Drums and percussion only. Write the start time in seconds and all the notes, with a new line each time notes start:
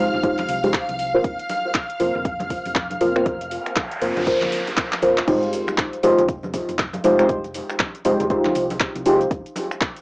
0.14 low conga
0.23 kick, closed hi-hat, muted conga
0.38 clap, closed hi-hat, high conga, low conga
0.49 open hi-hat
0.63 open hi-hat, muted conga, high conga
0.74 kick, clap, closed hi-hat
0.89 closed hi-hat, high conga
0.99 open hi-hat
1.15 muted conga
1.24 kick, closed hi-hat
1.39 closed hi-hat
1.49 open hi-hat, muted conga
1.75 kick, clap, closed hi-hat
1.90 closed hi-hat
2.00 open hi-hat, muted conga
2.15 low conga
2.25 kick, closed hi-hat
2.40 closed hi-hat, muted conga, high conga, low conga
2.50 kick, open hi-hat
2.66 open hi-hat, high conga
2.75 kick, clap, closed hi-hat
2.90 closed hi-hat, muted conga, high conga
3.01 open hi-hat
3.16 finger snap
3.26 kick, closed hi-hat, muted conga
3.41 closed hi-hat
3.51 open hi-hat
3.66 finger snap, closed hi-hat
3.76 kick, clap, closed hi-hat, muted conga
3.92 closed hi-hat
4.02 open hi-hat
4.17 closed hi-hat, muted conga, high conga, low conga
4.27 kick, closed hi-hat
4.41 clap, closed hi-hat, high conga, low conga
4.52 open hi-hat
4.67 open hi-hat, muted conga, high conga
4.77 kick, clap, closed hi-hat
4.92 clap, closed hi-hat, high conga
5.02 open hi-hat, muted conga
5.18 clap, closed hi-hat
5.28 kick, closed hi-hat, crash, shaker
5.43 closed hi-hat, shaker
5.53 open hi-hat, shaker
5.67 finger snap, muted conga, shaker
5.78 kick, clap, closed hi-hat, shaker
5.93 closed hi-hat, shaker
6.03 open hi-hat, muted conga, shaker
6.18 closed hi-hat, low conga, shaker
6.28 kick, closed hi-hat, shaker
6.43 high conga, low conga, shaker
6.54 kick, open hi-hat, muted conga, shaker
6.69 open hi-hat, high conga, shaker
6.79 kick, clap, closed hi-hat, shaker
6.93 closed hi-hat, muted conga, high conga, shaker
7.04 open hi-hat, shaker
7.19 finger snap, closed hi-hat, shaker
7.29 kick, closed hi-hat, shaker
7.44 closed hi-hat, muted conga, shaker
7.54 open hi-hat, shaker
7.70 finger snap, shaker
7.80 kick, clap, closed hi-hat, muted conga, shaker
7.95 closed hi-hat, shaker
8.05 open hi-hat, shaker
8.20 closed hi-hat, low conga, shaker
8.30 kick, closed hi-hat, muted conga, shaker
8.45 clap, high conga, low conga, shaker
8.55 open hi-hat, shaker
8.70 open hi-hat, muted conga, high conga, shaker
8.80 kick, clap, closed hi-hat, shaker
8.96 closed hi-hat, high conga, shaker
9.06 open hi-hat, shaker
9.21 closed hi-hat, muted conga, shaker
9.31 kick, closed hi-hat, shaker
9.46 closed hi-hat, shaker
9.56 open hi-hat, muted conga, shaker
9.71 finger snap, shaker
9.81 kick, clap, closed hi-hat, shaker
9.97 closed hi-hat, shaker